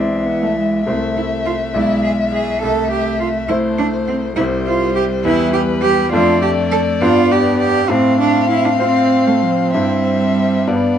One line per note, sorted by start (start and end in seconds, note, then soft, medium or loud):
0.00 0.89 B1 medium
0.00 0.85 E3 soft
0.00 0.82 G#3 soft
0.00 0.27 C4 medium
0.00 0.82 E4 soft
0.00 0.83 D5 soft
0.00 0.85 E5 soft
0.26 0.44 B3 medium
0.43 0.57 A3 medium
0.56 0.86 G#3 medium
0.86 1.72 C2 medium
0.86 1.76 A3 medium
0.86 1.70 A3 soft
0.86 0.95 C4 medium
0.86 1.71 E4 soft
0.86 1.71 C5 soft
0.86 3.52 E5 medium
1.17 1.25 E4 medium
1.46 1.54 F4 medium
1.74 2.60 B1 medium
1.74 2.59 G#3 soft
1.74 2.63 G#3 medium
1.74 2.59 E4 soft
1.74 2.03 E4 medium
1.74 2.59 D5 soft
2.03 2.11 G#4 medium
2.33 2.62 G#4 medium
2.63 3.48 C2 medium
2.63 3.49 A3 medium
2.63 2.91 A4 medium
2.91 3.19 G4 medium
3.20 3.28 F4 medium
3.49 4.34 A3 medium
3.49 4.36 A3 medium
3.49 3.57 E4 medium
3.49 4.34 E4 soft
3.49 4.34 C5 medium
3.49 4.38 C5 medium
3.78 3.86 D4 medium
4.08 4.16 C4 medium
4.36 5.23 C2 medium
4.36 6.09 G3 medium
4.36 5.21 G3 soft
4.36 4.44 E4 medium
4.36 5.21 E4 soft
4.36 5.27 C5 medium
4.36 5.22 C5 medium
4.67 4.94 F4 medium
4.95 5.03 G4 loud
5.24 6.10 E2 medium
5.24 6.09 G3 medium
5.24 5.52 E4 loud
5.24 6.09 E4 medium
5.24 6.12 B4 medium
5.24 6.09 B4 medium
5.53 5.61 G4 loud
5.82 6.12 G4 loud
6.12 6.98 F2 medium
6.12 6.97 A3 medium
6.12 7.02 A3 medium
6.12 6.97 D4 medium
6.12 6.41 F4 loud
6.12 7.86 D5 medium
6.12 6.97 D5 medium
6.42 6.50 G4 medium
6.71 6.79 A4 loud
7.01 7.87 G2 medium
7.01 7.89 B3 medium
7.01 7.86 B3 medium
7.01 7.86 D4 medium
7.01 7.33 F4 loud
7.01 7.86 D5 medium
7.32 7.59 G4 loud
7.59 7.92 G4 loud
7.89 8.77 A2 medium
7.89 10.69 C4 medium
7.89 8.20 C4 loud
7.89 9.70 F5 medium
8.20 8.49 D4 medium
8.50 8.67 E4 loud
8.65 8.78 D4 medium
8.79 9.29 C4 medium
8.79 9.70 C4 medium
8.79 9.70 F4 medium
8.79 9.70 C5 medium
9.27 9.44 A3 medium
9.42 9.76 F3 medium
9.74 10.65 G2 medium
9.74 10.98 G3 medium
9.74 10.64 C4 soft
9.74 10.64 E4 soft
9.74 10.65 C5 soft
9.74 10.69 E5 medium
10.67 10.98 G2 medium
10.67 10.98 B3 soft
10.67 10.98 B3 medium
10.67 10.98 D4 soft
10.67 10.98 D5 medium
10.67 10.98 D5 soft